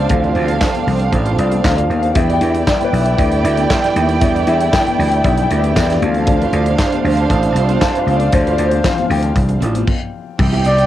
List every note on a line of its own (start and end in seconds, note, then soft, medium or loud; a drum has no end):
0.00 2.12 C3 medium
0.00 2.12 D3 medium
0.00 0.10 E3 medium
0.00 0.09 F3 medium
0.00 2.12 A3 medium
0.00 0.10 C4 medium
0.00 2.11 D4 medium
0.00 2.11 C5 medium
0.00 2.17 C5 medium
0.00 1.40 D5 loud
0.00 1.66 F5 medium
0.00 2.11 F5 loud
0.09 0.31 D2 loud
0.09 2.12 E3 medium
0.09 2.11 F3 medium
0.09 2.12 C4 soft
0.09 2.14 C4 medium
0.09 0.83 A4 medium
0.09 muted clean electric guitar stroke soft
0.09 kick loud
0.09 closed hi-hat loud
0.09 muted conga soft
0.09 low conga medium
0.24 0.35 F4 medium
0.24 0.36 A4 medium
0.24 0.38 D5 medium
0.24 closed hi-hat soft
0.35 0.57 D2 medium
0.35 0.50 F4 medium
0.35 0.50 A4 medium
0.35 0.49 C5 medium
0.35 closed hi-hat medium
0.35 muted conga soft
0.48 muted clean electric guitar stroke soft
0.48 closed hi-hat soft
0.48 high conga medium
0.60 muted clean electric guitar stroke soft
0.60 kick loud
0.60 snare loud
0.60 clap medium
0.60 tambourine medium
0.60 muted conga soft
0.75 muted clean electric guitar stroke soft
0.75 closed hi-hat soft
0.75 high conga medium
0.87 1.08 C2 medium
0.87 open hi-hat medium
0.87 low conga medium
0.99 muted clean electric guitar stroke medium
0.99 closed hi-hat soft
1.11 1.34 A1 medium
1.11 muted clean electric guitar stroke soft
1.11 kick loud
1.11 closed hi-hat medium
1.11 muted conga soft
1.26 1.37 F4 medium
1.26 1.38 A4 medium
1.26 1.39 C5 medium
1.26 closed hi-hat soft
1.38 1.60 C2 medium
1.38 1.52 F4 medium
1.38 1.51 A4 medium
1.38 1.50 C5 medium
1.38 1.66 D5 medium
1.38 closed hi-hat medium
1.51 muted clean electric guitar stroke medium
1.51 closed hi-hat medium
1.51 high conga medium
1.64 1.85 D2 medium
1.64 1.97 F5 medium
1.64 muted clean electric guitar stroke soft
1.64 kick loud
1.64 snare loud
1.64 clap medium
1.64 tambourine medium
1.77 1.89 F4 medium
1.77 1.89 A4 medium
1.77 1.90 D5 medium
1.77 closed hi-hat medium
1.90 2.11 D#2 medium
1.90 muted clean electric guitar stroke soft
1.90 closed hi-hat medium
1.90 high conga medium
1.99 2.17 F5 medium
1.99 closed hi-hat soft
2.04 muted clean electric guitar stroke soft
2.15 2.37 E2 loud
2.15 5.98 D3 medium
2.15 2.50 G3 medium
2.15 5.98 G3 medium
2.15 2.51 B3 medium
2.15 5.98 B3 medium
2.15 2.51 D4 medium
2.15 5.97 E4 medium
2.15 5.98 E4 medium
2.15 5.98 D5 medium
2.15 2.34 E5 medium
2.15 5.97 G5 loud
2.15 muted clean electric guitar stroke medium
2.15 kick loud
2.15 closed hi-hat loud
2.15 low conga medium
2.30 2.41 D4 medium
2.30 2.42 G4 medium
2.30 2.43 D5 medium
2.30 2.49 G5 loud
2.30 closed hi-hat soft
2.41 2.62 E2 loud
2.41 2.55 D4 medium
2.41 2.55 G4 medium
2.41 2.54 B4 medium
2.41 closed hi-hat medium
2.50 2.66 E5 medium
2.54 muted clean electric guitar stroke medium
2.54 closed hi-hat soft
2.54 high conga soft
2.67 2.85 D5 medium
2.67 muted clean electric guitar stroke soft
2.67 kick loud
2.67 snare loud
2.67 clap medium
2.67 tambourine medium
2.67 muted conga soft
2.81 3.02 B4 medium
2.81 muted clean electric guitar stroke soft
2.81 closed hi-hat soft
2.81 high conga medium
2.93 3.14 B1 medium
2.93 open hi-hat medium
2.93 muted conga soft
2.93 low conga medium
3.01 3.19 E5 medium
3.06 muted clean electric guitar stroke soft
3.06 closed hi-hat medium
3.17 3.40 D2 medium
3.17 3.92 D5 medium
3.17 muted clean electric guitar stroke soft
3.17 kick loud
3.17 closed hi-hat medium
3.17 muted conga soft
3.32 muted clean electric guitar stroke medium
3.32 closed hi-hat soft
3.44 3.65 D2 medium
3.44 3.59 D4 medium
3.44 3.58 G4 medium
3.44 3.57 B4 medium
3.44 closed hi-hat medium
3.57 3.70 D4 soft
3.57 3.71 G4 soft
3.57 3.70 B4 medium
3.57 closed hi-hat soft
3.57 high conga medium
3.70 muted clean electric guitar stroke medium
3.70 kick loud
3.70 snare loud
3.70 clap medium
3.70 tambourine medium
3.84 3.95 D4 medium
3.84 3.96 G4 medium
3.84 3.98 D5 medium
3.84 snare soft
3.84 closed hi-hat medium
3.96 4.17 D#2 medium
3.96 muted clean electric guitar stroke soft
3.96 closed hi-hat medium
3.96 high conga medium
4.09 muted clean electric guitar stroke soft
4.09 closed hi-hat soft
4.21 4.43 E2 loud
4.21 4.56 G3 medium
4.21 4.57 B3 soft
4.21 4.57 D4 medium
4.21 muted clean electric guitar stroke soft
4.21 kick loud
4.21 closed hi-hat loud
4.21 muted conga soft
4.21 low conga medium
4.36 4.47 D4 medium
4.36 4.48 G4 medium
4.36 4.50 D5 medium
4.36 closed hi-hat soft
4.47 4.68 E2 loud
4.47 4.61 D4 medium
4.47 4.62 G4 medium
4.47 4.61 B4 medium
4.47 4.75 E5 loud
4.47 closed hi-hat medium
4.60 muted clean electric guitar stroke medium
4.60 closed hi-hat medium
4.60 high conga medium
4.73 5.06 G5 loud
4.73 muted clean electric guitar stroke soft
4.73 kick loud
4.73 snare loud
4.73 clap medium
4.73 tambourine loud
4.87 muted clean electric guitar stroke soft
4.87 closed hi-hat soft
4.87 high conga medium
4.99 5.20 D2 medium
4.99 open hi-hat medium
4.99 muted conga soft
4.99 low conga medium
5.08 5.18 G5 loud
5.08 closed hi-hat medium
5.14 muted clean electric guitar stroke soft
5.20 5.47 G3 soft
5.20 5.24 G5 medium
5.24 5.46 B1 medium
5.24 5.48 B3 soft
5.24 5.48 D4 medium
5.24 5.30 E5 medium
5.24 muted clean electric guitar stroke medium
5.24 kick loud
5.24 closed hi-hat medium
5.37 muted clean electric guitar stroke soft
5.37 closed hi-hat soft
5.42 5.60 G5 medium
5.50 5.72 D2 loud
5.50 5.65 D4 medium
5.50 5.65 G4 medium
5.50 5.64 B4 medium
5.50 closed hi-hat medium
5.59 5.77 E5 medium
5.64 5.76 D4 medium
5.64 5.77 G4 medium
5.64 5.77 B4 medium
5.64 closed hi-hat medium
5.64 high conga medium
5.76 5.97 E2 medium
5.76 5.92 D5 medium
5.76 muted clean electric guitar stroke soft
5.76 kick loud
5.76 snare loud
5.76 clap medium
5.76 tambourine loud
5.90 6.02 D4 medium
5.90 6.03 G4 medium
5.90 6.03 D5 medium
5.90 6.11 D5 medium
5.90 snare soft
5.90 closed hi-hat medium
6.02 6.44 D2 loud
6.02 9.84 C3 medium
6.02 9.84 D3 medium
6.02 6.76 E3 medium
6.02 6.75 F3 medium
6.02 9.84 A3 medium
6.02 6.76 C4 medium
6.02 9.84 D4 medium
6.02 9.84 C5 medium
6.02 9.84 F5 loud
6.02 muted clean electric guitar stroke soft
6.02 closed hi-hat medium
6.02 muted conga soft
6.02 high conga medium
6.11 6.28 F5 medium
6.11 closed hi-hat soft
6.16 muted clean electric guitar stroke soft
6.27 7.01 D5 medium
6.27 muted clean electric guitar stroke soft
6.27 kick loud
6.27 closed hi-hat loud
6.27 muted conga soft
6.27 low conga medium
6.41 6.52 C4 medium
6.41 6.53 F4 medium
6.41 6.55 B4 medium
6.41 closed hi-hat soft
6.53 6.74 D2 medium
6.53 6.67 C4 medium
6.53 6.67 F4 medium
6.53 6.66 A4 medium
6.53 closed hi-hat medium
6.66 muted clean electric guitar stroke medium
6.66 closed hi-hat soft
6.66 high conga medium
6.79 muted clean electric guitar stroke soft
6.79 kick loud
6.79 snare loud
6.79 clap loud
6.79 tambourine medium
6.79 muted conga soft
6.92 muted clean electric guitar stroke soft
6.92 closed hi-hat soft
6.92 high conga medium
7.04 7.26 D2 medium
7.04 open hi-hat medium
7.04 low conga medium
7.17 muted clean electric guitar stroke medium
7.17 closed hi-hat soft
7.30 7.51 A1 loud
7.30 muted clean electric guitar stroke soft
7.30 kick loud
7.30 closed hi-hat medium
7.43 muted clean electric guitar stroke soft
7.43 closed hi-hat medium
7.55 7.77 C2 loud
7.55 7.71 C4 medium
7.55 7.70 F4 medium
7.55 7.69 A4 loud
7.55 closed hi-hat medium
7.55 muted conga soft
7.69 7.80 C4 medium
7.69 7.82 F4 soft
7.69 7.82 A4 medium
7.69 closed hi-hat soft
7.69 high conga medium
7.82 7.99 A5 loud
7.82 muted clean electric guitar stroke soft
7.82 kick loud
7.82 snare loud
7.82 clap medium
7.82 tambourine loud
7.82 muted conga soft
7.95 8.05 C4 soft
7.95 8.07 F4 soft
7.95 8.08 B4 medium
7.95 8.17 F5 loud
7.95 closed hi-hat medium
8.07 8.28 C#2 loud
8.07 8.24 C4 medium
8.07 8.22 F4 medium
8.07 8.20 A4 medium
8.07 closed hi-hat medium
8.07 high conga medium
8.16 8.34 D5 medium
8.16 closed hi-hat soft
8.21 muted clean electric guitar stroke soft
8.32 8.54 D2 loud
8.32 8.51 C5 medium
8.32 muted clean electric guitar stroke soft
8.32 kick loud
8.32 closed hi-hat loud
8.32 low conga medium
8.47 8.57 C4 medium
8.47 8.59 F4 medium
8.47 8.60 B4 medium
8.47 closed hi-hat soft
8.52 8.69 D5 medium
8.58 8.80 D2 loud
8.58 8.72 C4 medium
8.58 8.73 F4 medium
8.58 8.72 A4 medium
8.58 closed hi-hat medium
8.58 muted conga soft
8.68 8.86 C5 medium
8.68 closed hi-hat soft
8.73 muted clean electric guitar stroke medium
8.73 high conga medium
8.84 10.35 E3 medium
8.84 10.35 F3 medium
8.84 10.35 C4 medium
8.84 9.12 F5 loud
8.84 muted clean electric guitar stroke soft
8.84 kick loud
8.84 snare loud
8.84 clap medium
8.84 tambourine loud
8.84 muted conga soft
8.98 muted clean electric guitar stroke soft
8.98 closed hi-hat soft
8.98 high conga medium
9.10 9.31 D2 medium
9.10 9.59 G5 medium
9.10 open hi-hat medium
9.10 muted conga soft
9.10 low conga medium
9.23 muted clean electric guitar stroke soft
9.23 closed hi-hat medium
9.36 9.57 C2 loud
9.36 muted clean electric guitar stroke soft
9.36 kick loud
9.36 closed hi-hat medium
9.49 muted clean electric guitar stroke soft
9.49 closed hi-hat soft
9.61 9.83 A1 medium
9.61 9.75 C4 loud
9.61 9.74 F4 medium
9.61 9.73 A4 loud
9.61 closed hi-hat medium
9.61 muted conga soft
9.75 9.88 C4 soft
9.75 9.88 F4 medium
9.75 9.87 A4 medium
9.75 closed hi-hat medium
9.75 high conga medium
9.87 kick loud
9.87 crash medium
10.39 10.60 C2 loud
10.39 10.86 B2 medium
10.39 10.86 C3 medium
10.39 10.86 G3 medium
10.39 10.86 E4 medium
10.39 10.86 G4 loud
10.39 10.86 G5 loud
10.39 muted clean electric guitar stroke soft
10.39 kick loud
10.39 crash loud
10.39 muted conga soft
10.39 low conga medium
10.53 10.63 B3 medium
10.53 10.65 E4 medium
10.53 10.66 G4 medium
10.53 closed hi-hat soft
10.64 10.86 C2 medium
10.64 10.78 B3 medium
10.64 10.79 E4 medium
10.64 10.77 G4 medium
10.64 10.86 D5 medium
10.64 closed hi-hat medium
10.64 muted conga soft
10.78 muted clean electric guitar stroke soft
10.78 closed hi-hat soft